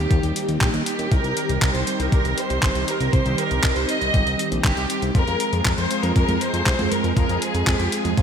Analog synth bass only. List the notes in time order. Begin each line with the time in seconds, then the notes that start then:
0.11 D#2
0.23 D#2
0.48 D#2
0.61 A#1
0.74 D#2
0.99 D#2
1.12 C2
1.24 C2
1.49 C2
1.62 C2
1.75 C2
2.00 C2
2.12 C2
2.25 C2
2.50 C2
2.63 G1
2.75 C2
3.01 C2
3.13 C2
3.26 C2
3.51 C2
3.64 C2
3.76 C2
4.01 C2
4.14 G1
4.27 C2
4.52 A#1
4.64 G1
4.77 C2
5.02 C2
5.15 F2
5.28 F2
5.53 F2
5.65 F2
5.78 F2
6.03 F2
6.16 F2
6.28 F2
6.54 F2
6.66 C2
6.79 F2
7.04 F2
7.17 F2
7.29 F2
7.54 F2
7.67 F2
7.80 F2
8.05 F2
8.17 F2